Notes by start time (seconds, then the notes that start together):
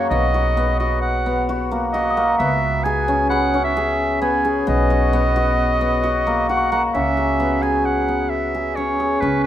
Already playing: A#3 C#4 F#4 G#4
0.05 A#5
0.10 B1 B3 D#5
0.34 F#4
0.57 B3
0.80 F#4 D#5
1.01 F#5
1.26 B3
1.49 F#4
1.71 A#3
1.93 F#4 D#5
2.11 D#6
2.17 A#3
2.38 C#2 B3 E5
2.84 G#4 G#5
3.08 C#4
3.30 G#4 F#5 B5
3.54 C#4
3.64 E5
3.77 G#4
4.22 B3 G#5
4.45 G#4
4.67 B1 B3 D#5
4.90 F#4
5.13 B3
5.36 F#4
5.81 B3
6.04 F#4
6.27 A#3
6.49 F#4 F#5
6.57 C#6
6.72 A#3 F#5
6.95 C#2 C#4 E5
7.17 G#4
7.40 B3
7.62 G#4 G#5
7.85 F#5
8.08 B3
8.30 E5
8.55 G#4
8.76 C#4 C#5
9.00 G#4
9.21 C#2 C#4 B4